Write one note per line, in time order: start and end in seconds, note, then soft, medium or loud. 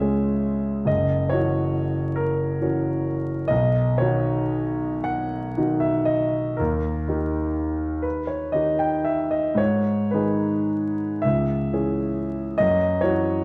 0.00 0.91 C#2 soft
0.00 0.85 G#3 soft
0.00 0.85 C#4 soft
0.00 0.85 G#4 soft
0.00 0.88 E5 medium
0.85 1.29 F#1 soft
0.85 1.31 D#5 medium
1.29 2.57 E3 soft
1.29 2.57 C#4 soft
1.29 2.57 F#4 soft
1.29 2.17 C#5 medium
2.16 3.49 A#4 medium
2.61 3.46 E3 soft
2.61 3.46 C#4 soft
2.61 3.46 F#4 soft
3.48 3.98 B1 medium
3.48 3.98 D#5 medium
3.98 5.53 D#3 soft
3.98 5.54 D#4 soft
3.98 5.54 F#4 soft
3.98 5.05 C#5 medium
5.04 5.81 F#5 medium
5.57 6.55 D#3 soft
5.57 6.55 D#4 soft
5.57 6.56 F#4 soft
5.80 6.07 E5 medium
6.05 6.58 D#5 medium
6.57 7.07 D#2 soft
6.57 8.03 A#4 medium
7.08 8.50 D#3 soft
7.08 8.51 D#4 soft
7.08 8.51 G4 soft
8.02 8.28 B4 soft
8.27 8.54 C#5 soft
8.52 9.54 D#3 soft
8.52 9.54 D#4 soft
8.52 9.55 G4 soft
8.52 8.79 D#5 medium
8.79 9.05 G5 medium
9.04 9.31 E5 medium
9.31 9.58 D#5 medium
9.55 10.09 G#2 soft
9.55 10.12 C#5 medium
10.11 11.21 D#3 soft
10.11 11.21 D#4 soft
10.11 11.21 G#4 soft
10.11 11.23 B4 medium
11.22 11.71 C#2 soft
11.22 12.59 E5 medium
11.73 12.57 E3 soft
11.73 12.57 C#4 soft
11.73 12.57 G#4 soft
12.58 13.02 F#2 medium
12.58 13.02 D#5 medium
13.01 13.44 E3 soft
13.01 13.44 C#4 soft
13.01 13.44 F#4 soft
13.01 13.44 C#5 medium